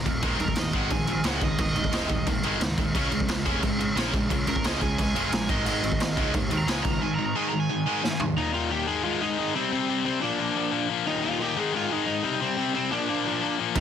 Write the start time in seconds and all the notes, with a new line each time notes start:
0.05 D#1 D#2 A#2, kick, crash
0.22 D#1 G#2 D#3 G#3, kick, crash
0.38 D#1 G#2 D#3 A#4, crash
0.48 kick
0.56 D#1 G#2 D#3 D#5, snare, crash
0.73 G#1 G#2 D#3 G#3 F#5, kick, crash
0.90 A#1 G#2 D#3 G#5, kick, crash
1.07 G#2 D#3, crash
1.24 C#2 G#2 D#3 G#3 F#5, snare, crash
1.41 G#2 D#3 D#5, kick, crash
1.58 D#1 G#2 D#3 D#5, kick, crash
1.76 D#1 G#2 D#3, crash
1.84 kick
1.92 D#1 G#2 D#3 G#3, snare, crash
2.09 D#1 G#2 D#3, kick, crash
2.27 D#1 G#2 D#3, kick, crash
2.43 G1 G#2 D#3 G#3, crash
2.60 C#2 G#2 D#3, snare, crash
2.78 D#1 G#2 D#3, kick, crash
2.95 C#2 C#3 G#3 C#4, kick, crash
3.11 C#2 C#3 G#3, crash
3.20 kick
3.28 C#2 C#3 G#3, snare, crash
3.45 F1 C#3 G#3 C#4, kick, crash
3.62 G#1 C#3 G#3, kick, crash
3.79 C#3 G#3, crash
3.95 A#1 C#3 G#3 C#4, snare, crash
4.14 C#3 G#3, kick, crash
4.30 C#2 C#3 G#3, kick, crash
4.47 C#2 C#3 G#3 A#4, crash
4.56 kick
4.64 C#2 C#3 G#3 C#4 D#5, snare, crash
4.81 C#2 C#3 G#3 G#5, kick, crash
4.98 C#2 C#3 G#3 G#5, kick, crash
5.14 F1 C#3 G#3 C#4, crash
5.32 A#1 C#3 G#3 G#5, snare, crash
5.49 G#1 G#2 D#3 G#3 D#5, kick, crash
5.65 G#1 G#2 D#3 G#3 D#5, crash
5.82 G#1 G#2 D#3, crash
5.92 kick
5.99 G#1 G#2 D#3, snare, crash
6.16 C#2 G#2 D#3 G#3, kick, crash
6.33 D#2 G#2 D#3, kick, crash
6.50 G#2 D#3, crash
6.58 A#5
6.66 C#2 G#2 D#3 G#3 G#5, snare, crash
6.82 G#2 D#3 A#5, kick, crash
6.92 A#5
7.01 G#2 D#3 G#5
7.15 G#2 D#3 A#5
7.26 A#5
7.36 G#2 D#3 G#3 G#5
7.49 G#2 D#3 A#5
7.60 G#5
7.70 G#2 D#3
7.86 G#2 D#3 G#3
8.03 G#2 D#3, snare
8.20 G#2 D#3, floor tom
8.37 D#2 A#2 D#3 D#4
8.54 D#2 A#2 D#3 F4
8.70 D#2 A#2 D#3 G4
8.87 G#2 D#3 G#3 G#4
9.03 G#2 D#3 G#3 F4
9.21 G#2 D#3 G#3 D#4
9.38 G#2 D#3 G#3
9.55 C3 G3 C4
9.72 C3 G3 C4
9.89 C3 G3 C4
10.05 C3 G3 C4
10.21 A#2 F3 A#3 D4
10.39 A#2 F3 A#3
10.55 A#2 F3 A#3
10.72 A#2 F3 A#3
10.89 A#2 F3 A#3
11.05 D#2 A#2 D#3 D#4
11.22 D#2 A#2 D#3 F4
11.39 D#2 A#2 D#3 G4
11.56 G#2 D#3 G#3 G#4
11.72 G#2 D#3 G#3 F4
11.89 G#2 D#3 G#3 D#4
12.07 G#2 D#3 G#3
12.23 C3 G3 C4
12.40 C3 G3 C4
12.57 C3 G3 C4
12.74 C3 G3 C4
12.91 A#2 F3 A#3 D4
13.09 A#2 F3 A#3
13.26 A#2 F3 A#3
13.42 A#2 F3 A#3
13.58 A#2 F3 A#3
13.75 D#1 D#2 A#2 D#3 D#4, kick, crash